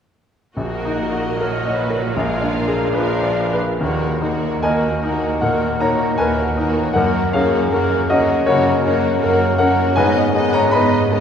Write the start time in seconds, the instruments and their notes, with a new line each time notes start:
0.57 grand piano A#1, cello section A#2, viola section A#3 F#4, violin section A#4 D#5
0.85 grand piano D#4
1.13 grand piano F#4
1.36 viola section F#3 F#4, violin section C#5
1.40 grand piano A#4
1.66 grand piano D#5
1.76 violin section B4
1.90 grand piano A#4
2.14 grand piano A#1, viola section G#3 F4, violin section A#4 F5
2.41 grand piano D4
2.53 viola section A#3
2.68 grand piano G#4
2.93 viola section F3 D4, violin section A#4 F5, grand piano B4
3.23 grand piano D5
3.53 grand piano B4
3.80 grand piano D#2, cello section D#2, viola section A#3, violin section F#4 A#4
4.21 viola section A#3, grand piano D#4, violin section F#4 A#4
4.62 cello section D#2, viola section A#3, violin section F#4 A#4, grand piano A#4 D#5 G#5
5.01 viola section A#3, grand piano D#4, violin section F#4 A#4
5.40 cello section D#2, grand piano A#2 A#4 F#5, viola section A#3, violin section F#4 A#4
5.78 viola section A#3, grand piano D#4 C#5 A#5, violin section F#4 A#4
6.18 cello section D#2, viola section A#3, violin section F#4 A#4, grand piano A#4 B4 G#5
6.56 viola section A#3, grand piano D#4, violin section F#4 A#4
6.93 cello section F#2, grand piano F#2 A#4 F#5, viola section A#3, violin section F#4 A#4
7.32 viola section A#3, grand piano C#4 G#4 F5, violin section F#4 A#4
7.71 cello section F#2, viola section A#3, violin section F#4 A#4, grand piano A#4
8.08 viola section A#3, grand piano C#4 F#4 D#5, violin section F#4 A#4
8.45 cello section F#2, grand piano C#3 F#4 C#5, viola section A#3, violin section F#4 A#4
8.82 viola section A#3, grand piano C#4, violin section F#4 A#4
9.19 cello section F#2, viola section A#3, violin section F#4 A#4
9.23 grand piano A#4
9.57 viola section A#3, grand piano C#4 A#4 F#5, violin section F#4 A#4
9.95 grand piano G#2 B4 G#5, cello section G#2, viola section B3, violin section D#4 D#5
10.34 grand piano G#3, viola section B3, violin section D#4 D#5
10.53 grand piano C#5 A#5
10.71 cello section G#2, viola section B3, violin section D#4 D#5, grand piano B4 D#5 B5
11.11 grand piano G#3, viola section B3, violin section D#4 D#5